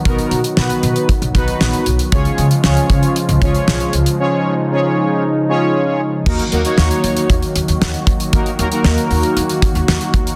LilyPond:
<<
  \new Staff \with { instrumentName = "Analog polysynth" } { \time 4/4 \key ees \minor \tempo 4 = 116 <b dis' fis' bes'>8. r16 <b dis' fis' b'>4 r8 <b dis' fis' b'>4 r8 | <des' f' aes' des''>8. r16 <des' f' aes' des''>4 r8 <des' f' aes' des''>4 r8 | <des' f' aes' des''>8. r16 <des' f' aes' des''>4 r8 <des' f' aes' des''>4 r8 | <bes ees' ges' bes'>16 r16 <bes ees' ges' bes'>16 <bes ees' ges' des''>4~ <bes ees' ges' des''>16 r2 |
<bes ees' ges' bes'>16 r16 <bes ees' ges' bes'>16 <bes ees' ges' bes'>4~ <bes ees' ges' bes'>16 r2 | }
  \new Staff \with { instrumentName = "Analog synth pad" } { \clef bass \time 4/4 \key ees \minor << { ges'1 | f'1 | ees'1 | ges'1~ |
ges'1 | } \\ { <dis ges b>1 | <des f aes>1~ | <des f aes>1 | <ees ges bes>1~ |
<ees ges bes>1 | } >> }
  \new Staff \with { instrumentName = "Upright bass" } { \clef bass \time 4/4 \key ees \minor b,,16 r16 b,16 r16 b,,16 r16 b,16 r8 b,,16 b,,16 r16 bes,,16 r16 b,,16 r16 | des,16 r16 des16 r16 des,16 r16 des16 r8 des,16 des,16 r16 ces,16 r16 des,16 r16 | r1 | ees,16 r16 ees,16 r16 ees,16 r16 ees,16 r16 ees,16 r16 ees,16 ees,16 ees,16 r16 ees,16 r16 |
ees,16 r16 ees,16 r16 ees,16 r16 ees,16 r16 ees,16 r16 ees,16 ees,16 ees,16 r16 ees,16 r16 | }
  \new DrumStaff \with { instrumentName = "Drums" } \drummode { \time 4/4 <hh bd>16 hh16 hh16 hh16 sn16 hh16 hh16 hh16 <hh bd>16 hh16 <hh bd>16 hh16 sn16 hh16 hh16 hh16 | <hh bd>16 hh16 hh16 hh16 sn16 hh16 <hh bd>16 hh16 hh16 hh16 <hh bd>16 hh16 sn16 hh16 hh16 hh16 | r4 r4 r4 r4 | <cymc bd>16 hh16 hh16 hh16 sn16 hh16 hh16 hh16 <hh bd>16 hh16 hh16 hh16 sn16 hh16 <hh bd>16 hh16 |
<hh bd>16 hh16 hh16 hh16 sn16 hh16 hho16 hh16 hh16 hh16 <hh bd>16 hh16 sn16 hh16 <hh bd>16 hh16 | }
>>